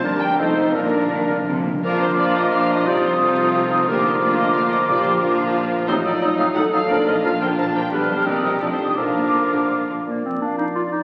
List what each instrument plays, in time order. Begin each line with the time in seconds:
Already playing: violin section A5
0.02 double bass section G1, cello section G2, harp G2, viola section G3 A#3, french horn section A#3 D4, clarinet D4, violin section D4 A#4, bassoon D4, oboe A#4
0.13 harp G3
0.20 harp D4, violin section G5, flute section G5
0.30 harp A#4
0.37 double bass section F1, cello section F2, harp F2, viola section A3 C4, french horn section A3 D#4, violin section D#4 F4 C5, clarinet D#4, bassoon D#4, oboe A4, flute section C5
0.48 harp A3
0.58 harp D#4
0.66 harp F4
0.74 double bass section A#1, cello section A#2, timpani A#2, harp A#2, viola section A#3 D4, french horn section A#3 D4, clarinet D4, violin section D4 A#4, bassoon D4, oboe A#4, flute section A#4
0.83 timpani A#2, harp A#3
0.90 timpani A#2, harp D4
0.97 timpani A#2
1.03 timpani A#2, harp F4
1.11 timpani A#2, cello section D#3
1.20 timpani A#2, harp D5
1.28 timpani A#2, cello section D3, harp F5
1.36 timpani A#2, harp D5
1.43 timpani A#2
1.48 timpani A#2, cello section C3, harp F4
1.58 timpani A#2, harp A#3
1.66 timpani A#2, cello section A#2, harp F3
1.74 timpani A#2, harp A#3
1.83 double bass section A#1, cello section A#2, harp A#2, viola section F3 D4, bassoon F3, violin section D4 F4 A#4, clarinet F4, oboe A#4, flute section D6
2.01 harp A#3, violin section C5
2.18 viola section F3 D4, violin section D4 F4 D5, french horn section F4, harp F4
2.35 violin section D#5
2.52 viola section F3 D4, violin section D4 F4 F5, french horn section D4, harp F4
2.70 violin section D#5
2.86 double bass section C2, cello section C3, harp C3, viola section F3 C4, violin section D#4 F4 D5, french horn section G4, oboe C5, flute section D#6
3.04 harp F3, violin section C5
3.20 viola section F3 C4, violin section D#4 F4 A4, harp F4
3.38 harp D#4
3.55 harp F4, french horn section F4
3.71 harp D#4
3.87 double bass section D2, harp D3, cello section D3, bassoon F3, viola section F3 A#3, violin section D4 F4 A#4, clarinet F4, french horn section G4, oboe A#4, flute section D6
4.04 harp D4, violin section C5
4.21 viola section F3 A#3, violin section D4 F4 D5, harp F4, french horn section F4
4.38 harp D5, violin section D#5
4.53 viola section F3 A#3, violin section D4 F4 F5, harp F4
4.70 harp D4, violin section D#5
4.87 double bass section A#1, timpani A#2, cello section A#2, harp A#2, viola section F3 A#3, violin section D4 F4 D5, french horn section G4
5.03 harp F3, violin section C5
5.18 viola section F3 A#3, violin section D4 F4 A#4, french horn section F4, harp F4
5.38 harp D4
5.72 harp D4
5.87 double bass section A1, cello section A2, harp A2, viola section C3 D#4, bassoon F#3, clarinet D#4, violin section D#4 C5, oboe A4, flute section D#6
6.04 double bass section A1, cello section A2, viola section D#3, bassoon F#3, harp F#3, clarinet D#4, oboe A4, violin section D5, flute section D#6
6.21 double bass section A1, cello section A2, viola section F#3, bassoon F#3, clarinet D#4, harp D#4, oboe A4, violin section D#5, flute section D#6
6.38 double bass section A1, cello section A2, viola section C3, bassoon F#3, clarinet D#4, harp F#4, oboe A4, violin section F5, flute section D#6
6.54 double bass section A1, cello section A2, viola section D#3, bassoon F#3, clarinet D#4, harp D#4, french horn section A4, oboe A4, violin section F#5, flute section D#6
6.72 double bass section A1, cello section A2, viola section F#3, bassoon F#3, harp F#3, clarinet D#4, oboe A4, violin section F5, flute section D#6
6.89 double bass section A#1, cello section A#2, harp A#2, viola section D3 A#3, bassoon F3, violin section D4 F4 D5, clarinet D4, oboe A#4, flute section F6
7.06 double bass section A#1, cello section A#2, viola section D3, bassoon F3, harp F3, clarinet D4, oboe A#4, violin section D#5, flute section F6
7.23 double bass section A#1, cello section A#2, viola section F3, bassoon F3, clarinet D4, harp F4, french horn section F4, oboe A#4, violin section F5, flute section F6
7.40 double bass section A#1, cello section A#2, viola section D3, bassoon F3, clarinet D4, harp D4, oboe A#4, violin section G5, flute section F6
7.57 double bass section A#1, cello section A#2, viola section D3, bassoon F3, clarinet D4, harp F4, oboe A#4, violin section A5, flute section F6
7.74 double bass section A#1, cello section A#2, viola section F3, bassoon F3, clarinet D4, harp D4, oboe A#4, violin section G5, flute section F6
7.91 double bass section B1, harp B2, cello section B2, viola section D3 G3, bassoon G3, clarinet D4, violin section G4 B4, french horn section G4, oboe B4, flute section F6
8.09 double bass section B1, cello section B2, viola section D3, harp D4 F4, violin section C5
8.25 double bass section C2, harp C3, cello section C3, viola section D#3 A#3, bassoon G3, clarinet C4, violin section D#4 D5, french horn section G4, oboe A#4, flute section D#6
8.42 double bass section C2, viola section C3, cello section C3, harp A#3 D#4, violin section D#5
8.60 double bass section F1, harp F2, cello section F2, viola section C3 A3, bassoon G3, violin section D4 D5, clarinet D4, french horn section F4, oboe A4, flute section D#6
8.70 violin section C5
8.79 double bass section F1, cello section F2, viola section D#3, harp A3 D4
8.97 double bass section A#1, harp A#2, cello section A#2, viola section D3 A#3, bassoon F3, french horn section D4, clarinet D4, violin section F4 A#4, oboe A#4, flute section D6
9.15 double bass section A#1, cello section A#2, viola section D3, harp A#3
9.34 double bass section A#1, cello section A#2, viola section D3, harp F4
9.52 double bass section A#1, cello section A#2, viola section D3, harp A#4
9.70 double bass section A#1, cello section A#2, viola section D3, harp F4
9.89 double bass section A#1, cello section A#2, viola section D3, harp D4
10.06 bassoon A#2, harp A#2, french horn section F3 D4, clarinet A#3, oboe D5
10.25 harp F3, clarinet C4
10.41 clarinet D4, harp F4, flute section F5
10.58 harp D4, clarinet D#4
10.75 clarinet F4, harp F4, flute section D5
10.92 harp D4, clarinet D#4